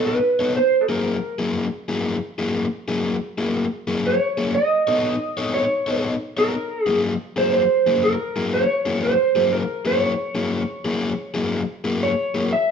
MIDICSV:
0, 0, Header, 1, 3, 480
1, 0, Start_track
1, 0, Tempo, 497512
1, 545, Time_signature, 4, 2, 24, 8
1, 12265, End_track
2, 0, Start_track
2, 0, Title_t, "Electric slide guitar"
2, 0, Program_c, 0, 29
2, 60, Note_on_c, 0, 71, 85
2, 540, Note_off_c, 0, 71, 0
2, 544, Note_on_c, 0, 72, 88
2, 781, Note_on_c, 0, 69, 57
2, 785, Note_off_c, 0, 72, 0
2, 859, Note_off_c, 0, 69, 0
2, 863, Note_on_c, 0, 70, 74
2, 1313, Note_off_c, 0, 70, 0
2, 3923, Note_on_c, 0, 73, 85
2, 4382, Note_off_c, 0, 73, 0
2, 4386, Note_on_c, 0, 75, 101
2, 5341, Note_off_c, 0, 75, 0
2, 5345, Note_on_c, 0, 73, 81
2, 5790, Note_off_c, 0, 73, 0
2, 6159, Note_on_c, 0, 70, 93
2, 6593, Note_off_c, 0, 70, 0
2, 6593, Note_on_c, 0, 68, 93
2, 6750, Note_off_c, 0, 68, 0
2, 7118, Note_on_c, 0, 72, 89
2, 7259, Note_off_c, 0, 72, 0
2, 7270, Note_on_c, 0, 72, 85
2, 7713, Note_off_c, 0, 72, 0
2, 7754, Note_on_c, 0, 70, 82
2, 8195, Note_off_c, 0, 70, 0
2, 8235, Note_on_c, 0, 73, 95
2, 8711, Note_off_c, 0, 73, 0
2, 8715, Note_on_c, 0, 72, 86
2, 9156, Note_off_c, 0, 72, 0
2, 9191, Note_on_c, 0, 70, 84
2, 9522, Note_off_c, 0, 70, 0
2, 9522, Note_on_c, 0, 73, 86
2, 10918, Note_off_c, 0, 73, 0
2, 11607, Note_on_c, 0, 73, 93
2, 12044, Note_off_c, 0, 73, 0
2, 12085, Note_on_c, 0, 76, 105
2, 12265, Note_off_c, 0, 76, 0
2, 12265, End_track
3, 0, Start_track
3, 0, Title_t, "Overdriven electric guitar"
3, 0, Program_c, 1, 29
3, 0, Note_on_c, 1, 59, 65
3, 0, Note_on_c, 1, 63, 71
3, 0, Note_on_c, 1, 69, 79
3, 0, Note_on_c, 1, 73, 77
3, 159, Note_off_c, 1, 73, 0
3, 161, Note_off_c, 1, 69, 0
3, 162, Note_off_c, 1, 63, 0
3, 165, Note_off_c, 1, 59, 0
3, 379, Note_on_c, 1, 73, 75
3, 386, Note_on_c, 1, 69, 72
3, 390, Note_on_c, 1, 63, 61
3, 393, Note_on_c, 1, 59, 67
3, 539, Note_off_c, 1, 73, 0
3, 543, Note_off_c, 1, 69, 0
3, 545, Note_off_c, 1, 63, 0
3, 546, Note_off_c, 1, 59, 0
3, 857, Note_on_c, 1, 68, 91
3, 863, Note_on_c, 1, 64, 77
3, 866, Note_on_c, 1, 58, 81
3, 869, Note_on_c, 1, 54, 69
3, 1116, Note_off_c, 1, 68, 0
3, 1119, Note_off_c, 1, 64, 0
3, 1120, Note_off_c, 1, 58, 0
3, 1122, Note_off_c, 1, 54, 0
3, 1337, Note_on_c, 1, 68, 79
3, 1342, Note_on_c, 1, 64, 72
3, 1348, Note_on_c, 1, 54, 68
3, 1348, Note_on_c, 1, 58, 70
3, 1596, Note_off_c, 1, 68, 0
3, 1598, Note_off_c, 1, 64, 0
3, 1601, Note_off_c, 1, 54, 0
3, 1601, Note_off_c, 1, 58, 0
3, 1819, Note_on_c, 1, 68, 83
3, 1824, Note_on_c, 1, 64, 94
3, 1827, Note_on_c, 1, 58, 69
3, 1831, Note_on_c, 1, 54, 70
3, 2076, Note_off_c, 1, 68, 0
3, 2079, Note_off_c, 1, 64, 0
3, 2080, Note_off_c, 1, 58, 0
3, 2082, Note_off_c, 1, 54, 0
3, 2300, Note_on_c, 1, 68, 66
3, 2303, Note_on_c, 1, 64, 71
3, 2310, Note_on_c, 1, 54, 52
3, 2310, Note_on_c, 1, 58, 66
3, 2557, Note_off_c, 1, 68, 0
3, 2558, Note_off_c, 1, 64, 0
3, 2562, Note_off_c, 1, 54, 0
3, 2562, Note_off_c, 1, 58, 0
3, 2779, Note_on_c, 1, 68, 91
3, 2782, Note_on_c, 1, 64, 74
3, 2788, Note_on_c, 1, 58, 69
3, 2789, Note_on_c, 1, 54, 78
3, 3036, Note_off_c, 1, 68, 0
3, 3038, Note_off_c, 1, 64, 0
3, 3041, Note_off_c, 1, 54, 0
3, 3041, Note_off_c, 1, 58, 0
3, 3259, Note_on_c, 1, 68, 71
3, 3263, Note_on_c, 1, 64, 72
3, 3267, Note_on_c, 1, 58, 68
3, 3270, Note_on_c, 1, 54, 53
3, 3516, Note_off_c, 1, 68, 0
3, 3518, Note_off_c, 1, 64, 0
3, 3520, Note_off_c, 1, 58, 0
3, 3522, Note_off_c, 1, 54, 0
3, 3737, Note_on_c, 1, 68, 87
3, 3739, Note_on_c, 1, 64, 66
3, 3744, Note_on_c, 1, 58, 67
3, 3748, Note_on_c, 1, 54, 70
3, 3995, Note_off_c, 1, 68, 0
3, 3996, Note_off_c, 1, 64, 0
3, 3999, Note_off_c, 1, 58, 0
3, 4001, Note_off_c, 1, 54, 0
3, 4220, Note_on_c, 1, 68, 74
3, 4228, Note_on_c, 1, 64, 61
3, 4231, Note_on_c, 1, 58, 70
3, 4234, Note_on_c, 1, 54, 59
3, 4379, Note_off_c, 1, 68, 0
3, 4383, Note_off_c, 1, 64, 0
3, 4385, Note_off_c, 1, 58, 0
3, 4386, Note_off_c, 1, 54, 0
3, 4701, Note_on_c, 1, 73, 76
3, 4706, Note_on_c, 1, 69, 85
3, 4710, Note_on_c, 1, 63, 81
3, 4713, Note_on_c, 1, 59, 79
3, 4957, Note_off_c, 1, 73, 0
3, 4960, Note_off_c, 1, 69, 0
3, 4961, Note_off_c, 1, 63, 0
3, 4963, Note_off_c, 1, 59, 0
3, 5183, Note_on_c, 1, 73, 76
3, 5187, Note_on_c, 1, 69, 75
3, 5189, Note_on_c, 1, 63, 66
3, 5194, Note_on_c, 1, 59, 52
3, 5438, Note_off_c, 1, 73, 0
3, 5440, Note_off_c, 1, 69, 0
3, 5441, Note_off_c, 1, 63, 0
3, 5443, Note_off_c, 1, 59, 0
3, 5660, Note_on_c, 1, 73, 93
3, 5666, Note_on_c, 1, 69, 70
3, 5672, Note_on_c, 1, 63, 76
3, 5675, Note_on_c, 1, 59, 71
3, 5916, Note_off_c, 1, 73, 0
3, 5919, Note_off_c, 1, 69, 0
3, 5922, Note_off_c, 1, 63, 0
3, 5924, Note_off_c, 1, 59, 0
3, 6146, Note_on_c, 1, 73, 78
3, 6150, Note_on_c, 1, 69, 71
3, 6156, Note_on_c, 1, 63, 63
3, 6158, Note_on_c, 1, 59, 60
3, 6302, Note_off_c, 1, 73, 0
3, 6304, Note_off_c, 1, 69, 0
3, 6307, Note_off_c, 1, 63, 0
3, 6308, Note_off_c, 1, 59, 0
3, 6622, Note_on_c, 1, 68, 85
3, 6625, Note_on_c, 1, 64, 75
3, 6630, Note_on_c, 1, 58, 76
3, 6636, Note_on_c, 1, 54, 73
3, 6877, Note_off_c, 1, 68, 0
3, 6879, Note_off_c, 1, 64, 0
3, 6881, Note_off_c, 1, 58, 0
3, 6884, Note_off_c, 1, 54, 0
3, 7103, Note_on_c, 1, 68, 78
3, 7106, Note_on_c, 1, 64, 74
3, 7108, Note_on_c, 1, 58, 57
3, 7113, Note_on_c, 1, 54, 66
3, 7358, Note_off_c, 1, 68, 0
3, 7359, Note_off_c, 1, 64, 0
3, 7360, Note_off_c, 1, 58, 0
3, 7363, Note_off_c, 1, 54, 0
3, 7588, Note_on_c, 1, 68, 78
3, 7593, Note_on_c, 1, 58, 87
3, 7593, Note_on_c, 1, 64, 80
3, 7598, Note_on_c, 1, 54, 64
3, 7840, Note_off_c, 1, 68, 0
3, 7843, Note_off_c, 1, 58, 0
3, 7843, Note_off_c, 1, 64, 0
3, 7845, Note_off_c, 1, 54, 0
3, 8065, Note_on_c, 1, 68, 73
3, 8070, Note_on_c, 1, 64, 73
3, 8074, Note_on_c, 1, 58, 64
3, 8078, Note_on_c, 1, 54, 65
3, 8319, Note_off_c, 1, 68, 0
3, 8321, Note_off_c, 1, 64, 0
3, 8323, Note_off_c, 1, 58, 0
3, 8325, Note_off_c, 1, 54, 0
3, 8545, Note_on_c, 1, 68, 91
3, 8549, Note_on_c, 1, 64, 99
3, 8555, Note_on_c, 1, 58, 80
3, 8557, Note_on_c, 1, 54, 71
3, 8799, Note_off_c, 1, 68, 0
3, 8801, Note_off_c, 1, 64, 0
3, 8804, Note_off_c, 1, 58, 0
3, 8805, Note_off_c, 1, 54, 0
3, 9025, Note_on_c, 1, 68, 79
3, 9031, Note_on_c, 1, 64, 80
3, 9034, Note_on_c, 1, 58, 62
3, 9037, Note_on_c, 1, 54, 70
3, 9279, Note_off_c, 1, 68, 0
3, 9282, Note_off_c, 1, 64, 0
3, 9284, Note_off_c, 1, 58, 0
3, 9285, Note_off_c, 1, 54, 0
3, 9504, Note_on_c, 1, 68, 88
3, 9508, Note_on_c, 1, 64, 85
3, 9511, Note_on_c, 1, 58, 77
3, 9515, Note_on_c, 1, 54, 61
3, 9759, Note_off_c, 1, 68, 0
3, 9761, Note_off_c, 1, 64, 0
3, 9762, Note_off_c, 1, 58, 0
3, 9764, Note_off_c, 1, 54, 0
3, 9984, Note_on_c, 1, 68, 71
3, 9990, Note_on_c, 1, 64, 77
3, 9992, Note_on_c, 1, 58, 66
3, 9994, Note_on_c, 1, 54, 66
3, 10239, Note_off_c, 1, 68, 0
3, 10242, Note_off_c, 1, 64, 0
3, 10243, Note_off_c, 1, 58, 0
3, 10244, Note_off_c, 1, 54, 0
3, 10466, Note_on_c, 1, 68, 94
3, 10472, Note_on_c, 1, 58, 83
3, 10472, Note_on_c, 1, 64, 84
3, 10476, Note_on_c, 1, 54, 70
3, 10720, Note_off_c, 1, 68, 0
3, 10723, Note_off_c, 1, 58, 0
3, 10723, Note_off_c, 1, 64, 0
3, 10726, Note_off_c, 1, 54, 0
3, 10942, Note_on_c, 1, 68, 82
3, 10948, Note_on_c, 1, 64, 69
3, 10949, Note_on_c, 1, 58, 62
3, 10954, Note_on_c, 1, 54, 68
3, 11199, Note_off_c, 1, 68, 0
3, 11202, Note_off_c, 1, 58, 0
3, 11202, Note_off_c, 1, 64, 0
3, 11205, Note_off_c, 1, 54, 0
3, 11426, Note_on_c, 1, 68, 75
3, 11431, Note_on_c, 1, 64, 81
3, 11434, Note_on_c, 1, 58, 76
3, 11435, Note_on_c, 1, 54, 73
3, 11681, Note_off_c, 1, 68, 0
3, 11684, Note_off_c, 1, 64, 0
3, 11685, Note_off_c, 1, 58, 0
3, 11686, Note_off_c, 1, 54, 0
3, 11910, Note_on_c, 1, 68, 68
3, 11914, Note_on_c, 1, 64, 67
3, 11917, Note_on_c, 1, 58, 66
3, 11922, Note_on_c, 1, 54, 61
3, 12066, Note_off_c, 1, 68, 0
3, 12068, Note_off_c, 1, 64, 0
3, 12070, Note_off_c, 1, 58, 0
3, 12072, Note_off_c, 1, 54, 0
3, 12265, End_track
0, 0, End_of_file